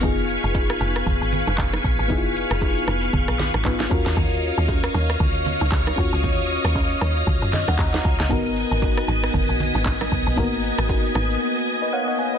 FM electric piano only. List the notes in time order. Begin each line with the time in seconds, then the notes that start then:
0.01 B3 D#4 F4 G#4
2.08 B3 D#4 E4 G#4
2.17 F4
3.64 B3 D#4 F4 B4
3.89 C#4 F4 F#4 A#4
5.96 C#4 F4 F#4 C#5
7.53 D#5
7.68 F#5
7.79 A#5
8.29 B3 D#4 F#4 A#4
10.36 A#3 D#4 F#4 A#4
10.42 B3
11.82 B4 D#5
11.93 C#5 F5 F#5
12.08 D#5 F#5
12.19 G#5
12.34 B4 D#5